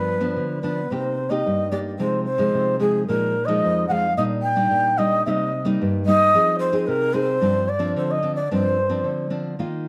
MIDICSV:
0, 0, Header, 1, 3, 480
1, 0, Start_track
1, 0, Tempo, 542005
1, 809, Time_signature, 4, 2, 24, 8
1, 8752, End_track
2, 0, Start_track
2, 0, Title_t, "Shakuhachi"
2, 0, Program_c, 0, 77
2, 0, Note_on_c, 0, 71, 96
2, 529, Note_off_c, 0, 71, 0
2, 547, Note_on_c, 0, 71, 81
2, 805, Note_on_c, 0, 72, 88
2, 818, Note_off_c, 0, 71, 0
2, 1150, Note_on_c, 0, 75, 92
2, 1164, Note_off_c, 0, 72, 0
2, 1512, Note_off_c, 0, 75, 0
2, 1518, Note_on_c, 0, 74, 82
2, 1573, Note_off_c, 0, 74, 0
2, 1762, Note_on_c, 0, 72, 85
2, 1983, Note_off_c, 0, 72, 0
2, 1988, Note_on_c, 0, 72, 93
2, 2445, Note_off_c, 0, 72, 0
2, 2478, Note_on_c, 0, 68, 96
2, 2707, Note_off_c, 0, 68, 0
2, 2721, Note_on_c, 0, 70, 97
2, 3059, Note_on_c, 0, 75, 97
2, 3073, Note_off_c, 0, 70, 0
2, 3432, Note_off_c, 0, 75, 0
2, 3437, Note_on_c, 0, 78, 91
2, 3467, Note_on_c, 0, 77, 98
2, 3476, Note_off_c, 0, 78, 0
2, 3666, Note_off_c, 0, 77, 0
2, 3694, Note_on_c, 0, 75, 90
2, 3748, Note_off_c, 0, 75, 0
2, 3918, Note_on_c, 0, 79, 99
2, 4409, Note_on_c, 0, 75, 94
2, 4422, Note_off_c, 0, 79, 0
2, 4650, Note_off_c, 0, 75, 0
2, 4658, Note_on_c, 0, 76, 76
2, 4695, Note_on_c, 0, 75, 83
2, 4704, Note_off_c, 0, 76, 0
2, 4989, Note_off_c, 0, 75, 0
2, 5365, Note_on_c, 0, 75, 118
2, 5814, Note_off_c, 0, 75, 0
2, 5838, Note_on_c, 0, 72, 86
2, 6085, Note_on_c, 0, 70, 98
2, 6099, Note_off_c, 0, 72, 0
2, 6320, Note_on_c, 0, 72, 96
2, 6333, Note_off_c, 0, 70, 0
2, 6807, Note_on_c, 0, 74, 98
2, 6821, Note_off_c, 0, 72, 0
2, 7049, Note_off_c, 0, 74, 0
2, 7053, Note_on_c, 0, 72, 79
2, 7181, Note_on_c, 0, 75, 94
2, 7194, Note_off_c, 0, 72, 0
2, 7395, Note_off_c, 0, 75, 0
2, 7400, Note_on_c, 0, 74, 87
2, 7517, Note_off_c, 0, 74, 0
2, 7544, Note_on_c, 0, 72, 92
2, 8222, Note_off_c, 0, 72, 0
2, 8752, End_track
3, 0, Start_track
3, 0, Title_t, "Nylon-string guitar"
3, 0, Program_c, 1, 24
3, 0, Note_on_c, 1, 43, 66
3, 0, Note_on_c, 1, 53, 54
3, 0, Note_on_c, 1, 59, 51
3, 0, Note_on_c, 1, 62, 62
3, 172, Note_off_c, 1, 53, 0
3, 174, Note_off_c, 1, 59, 0
3, 174, Note_off_c, 1, 62, 0
3, 181, Note_on_c, 1, 53, 63
3, 185, Note_on_c, 1, 59, 60
3, 189, Note_on_c, 1, 62, 67
3, 305, Note_off_c, 1, 43, 0
3, 323, Note_on_c, 1, 50, 60
3, 517, Note_off_c, 1, 53, 0
3, 519, Note_off_c, 1, 59, 0
3, 519, Note_off_c, 1, 62, 0
3, 558, Note_on_c, 1, 53, 55
3, 564, Note_on_c, 1, 59, 50
3, 568, Note_on_c, 1, 62, 64
3, 705, Note_off_c, 1, 53, 0
3, 708, Note_off_c, 1, 59, 0
3, 709, Note_off_c, 1, 62, 0
3, 782, Note_off_c, 1, 50, 0
3, 808, Note_on_c, 1, 48, 60
3, 812, Note_on_c, 1, 58, 58
3, 814, Note_on_c, 1, 63, 50
3, 817, Note_on_c, 1, 67, 55
3, 1034, Note_off_c, 1, 58, 0
3, 1036, Note_off_c, 1, 63, 0
3, 1038, Note_off_c, 1, 67, 0
3, 1152, Note_on_c, 1, 58, 61
3, 1159, Note_on_c, 1, 63, 66
3, 1164, Note_on_c, 1, 67, 73
3, 1265, Note_off_c, 1, 48, 0
3, 1297, Note_on_c, 1, 43, 63
3, 1482, Note_off_c, 1, 58, 0
3, 1486, Note_off_c, 1, 63, 0
3, 1488, Note_off_c, 1, 67, 0
3, 1520, Note_on_c, 1, 58, 53
3, 1525, Note_on_c, 1, 63, 50
3, 1526, Note_on_c, 1, 67, 63
3, 1726, Note_off_c, 1, 58, 0
3, 1728, Note_off_c, 1, 63, 0
3, 1729, Note_off_c, 1, 67, 0
3, 1749, Note_off_c, 1, 43, 0
3, 1765, Note_on_c, 1, 48, 71
3, 1768, Note_on_c, 1, 53, 55
3, 1770, Note_on_c, 1, 56, 54
3, 1774, Note_on_c, 1, 63, 54
3, 1993, Note_off_c, 1, 53, 0
3, 1994, Note_off_c, 1, 56, 0
3, 1997, Note_off_c, 1, 63, 0
3, 2108, Note_on_c, 1, 53, 58
3, 2117, Note_on_c, 1, 56, 62
3, 2117, Note_on_c, 1, 63, 64
3, 2224, Note_off_c, 1, 48, 0
3, 2252, Note_on_c, 1, 48, 58
3, 2441, Note_off_c, 1, 53, 0
3, 2444, Note_off_c, 1, 63, 0
3, 2445, Note_off_c, 1, 56, 0
3, 2476, Note_on_c, 1, 53, 55
3, 2481, Note_on_c, 1, 56, 55
3, 2490, Note_on_c, 1, 63, 56
3, 2684, Note_off_c, 1, 53, 0
3, 2687, Note_off_c, 1, 56, 0
3, 2691, Note_off_c, 1, 63, 0
3, 2707, Note_off_c, 1, 48, 0
3, 2732, Note_on_c, 1, 46, 61
3, 2737, Note_on_c, 1, 53, 53
3, 2742, Note_on_c, 1, 56, 49
3, 2742, Note_on_c, 1, 63, 57
3, 2957, Note_off_c, 1, 53, 0
3, 2958, Note_off_c, 1, 56, 0
3, 2961, Note_off_c, 1, 63, 0
3, 3082, Note_on_c, 1, 53, 68
3, 3086, Note_on_c, 1, 56, 66
3, 3088, Note_on_c, 1, 63, 76
3, 3188, Note_off_c, 1, 46, 0
3, 3230, Note_on_c, 1, 41, 71
3, 3408, Note_off_c, 1, 53, 0
3, 3408, Note_off_c, 1, 56, 0
3, 3411, Note_off_c, 1, 63, 0
3, 3453, Note_on_c, 1, 53, 53
3, 3453, Note_on_c, 1, 56, 54
3, 3458, Note_on_c, 1, 63, 57
3, 3592, Note_off_c, 1, 56, 0
3, 3593, Note_off_c, 1, 53, 0
3, 3595, Note_off_c, 1, 63, 0
3, 3676, Note_off_c, 1, 41, 0
3, 3696, Note_on_c, 1, 46, 64
3, 3697, Note_on_c, 1, 55, 54
3, 3700, Note_on_c, 1, 62, 52
3, 3708, Note_on_c, 1, 63, 68
3, 3918, Note_off_c, 1, 55, 0
3, 3920, Note_off_c, 1, 62, 0
3, 3924, Note_off_c, 1, 63, 0
3, 4036, Note_on_c, 1, 55, 59
3, 4043, Note_on_c, 1, 62, 66
3, 4046, Note_on_c, 1, 63, 67
3, 4150, Note_off_c, 1, 46, 0
3, 4174, Note_on_c, 1, 46, 66
3, 4365, Note_off_c, 1, 55, 0
3, 4367, Note_off_c, 1, 62, 0
3, 4370, Note_off_c, 1, 63, 0
3, 4413, Note_on_c, 1, 55, 57
3, 4417, Note_on_c, 1, 62, 51
3, 4420, Note_on_c, 1, 63, 70
3, 4613, Note_off_c, 1, 55, 0
3, 4615, Note_off_c, 1, 62, 0
3, 4616, Note_off_c, 1, 63, 0
3, 4628, Note_off_c, 1, 46, 0
3, 4662, Note_on_c, 1, 48, 63
3, 4666, Note_on_c, 1, 55, 51
3, 4669, Note_on_c, 1, 58, 51
3, 4673, Note_on_c, 1, 63, 55
3, 4882, Note_off_c, 1, 55, 0
3, 4885, Note_off_c, 1, 58, 0
3, 4887, Note_off_c, 1, 63, 0
3, 5002, Note_on_c, 1, 55, 65
3, 5006, Note_on_c, 1, 58, 75
3, 5015, Note_on_c, 1, 63, 78
3, 5113, Note_off_c, 1, 48, 0
3, 5150, Note_on_c, 1, 43, 77
3, 5328, Note_off_c, 1, 55, 0
3, 5331, Note_off_c, 1, 58, 0
3, 5332, Note_off_c, 1, 63, 0
3, 5379, Note_on_c, 1, 55, 66
3, 5381, Note_on_c, 1, 58, 50
3, 5389, Note_on_c, 1, 63, 66
3, 5516, Note_off_c, 1, 55, 0
3, 5518, Note_off_c, 1, 58, 0
3, 5519, Note_off_c, 1, 63, 0
3, 5596, Note_off_c, 1, 43, 0
3, 5615, Note_on_c, 1, 53, 67
3, 5616, Note_on_c, 1, 60, 57
3, 5622, Note_on_c, 1, 63, 56
3, 5623, Note_on_c, 1, 68, 58
3, 5934, Note_off_c, 1, 60, 0
3, 5936, Note_off_c, 1, 63, 0
3, 5939, Note_off_c, 1, 68, 0
3, 5953, Note_on_c, 1, 60, 62
3, 5959, Note_on_c, 1, 63, 69
3, 5962, Note_on_c, 1, 68, 68
3, 6070, Note_off_c, 1, 53, 0
3, 6092, Note_on_c, 1, 48, 72
3, 6284, Note_off_c, 1, 60, 0
3, 6287, Note_off_c, 1, 63, 0
3, 6287, Note_off_c, 1, 68, 0
3, 6323, Note_on_c, 1, 60, 59
3, 6327, Note_on_c, 1, 63, 54
3, 6332, Note_on_c, 1, 68, 59
3, 6528, Note_off_c, 1, 60, 0
3, 6531, Note_off_c, 1, 63, 0
3, 6531, Note_off_c, 1, 68, 0
3, 6547, Note_off_c, 1, 48, 0
3, 6567, Note_on_c, 1, 43, 66
3, 6570, Note_on_c, 1, 53, 56
3, 6572, Note_on_c, 1, 60, 50
3, 6576, Note_on_c, 1, 62, 51
3, 6795, Note_off_c, 1, 53, 0
3, 6797, Note_off_c, 1, 60, 0
3, 6797, Note_off_c, 1, 62, 0
3, 6900, Note_on_c, 1, 53, 67
3, 6905, Note_on_c, 1, 60, 64
3, 6906, Note_on_c, 1, 62, 76
3, 7025, Note_off_c, 1, 43, 0
3, 7053, Note_on_c, 1, 50, 71
3, 7237, Note_off_c, 1, 53, 0
3, 7239, Note_off_c, 1, 62, 0
3, 7240, Note_off_c, 1, 60, 0
3, 7283, Note_on_c, 1, 53, 50
3, 7288, Note_on_c, 1, 60, 55
3, 7290, Note_on_c, 1, 62, 56
3, 7428, Note_off_c, 1, 53, 0
3, 7430, Note_off_c, 1, 60, 0
3, 7432, Note_off_c, 1, 62, 0
3, 7508, Note_off_c, 1, 50, 0
3, 7539, Note_on_c, 1, 43, 66
3, 7541, Note_on_c, 1, 53, 61
3, 7545, Note_on_c, 1, 60, 54
3, 7548, Note_on_c, 1, 62, 60
3, 7760, Note_off_c, 1, 53, 0
3, 7763, Note_off_c, 1, 60, 0
3, 7763, Note_off_c, 1, 62, 0
3, 7877, Note_on_c, 1, 53, 56
3, 7880, Note_on_c, 1, 60, 62
3, 7887, Note_on_c, 1, 62, 55
3, 7991, Note_off_c, 1, 43, 0
3, 8007, Note_on_c, 1, 50, 59
3, 8206, Note_off_c, 1, 53, 0
3, 8206, Note_off_c, 1, 60, 0
3, 8210, Note_off_c, 1, 62, 0
3, 8238, Note_on_c, 1, 53, 49
3, 8240, Note_on_c, 1, 60, 52
3, 8244, Note_on_c, 1, 62, 59
3, 8446, Note_off_c, 1, 53, 0
3, 8446, Note_off_c, 1, 60, 0
3, 8449, Note_off_c, 1, 62, 0
3, 8465, Note_off_c, 1, 50, 0
3, 8492, Note_on_c, 1, 51, 63
3, 8496, Note_on_c, 1, 58, 55
3, 8499, Note_on_c, 1, 63, 49
3, 8501, Note_on_c, 1, 65, 54
3, 8718, Note_off_c, 1, 58, 0
3, 8719, Note_off_c, 1, 63, 0
3, 8721, Note_off_c, 1, 65, 0
3, 8752, Note_off_c, 1, 51, 0
3, 8752, End_track
0, 0, End_of_file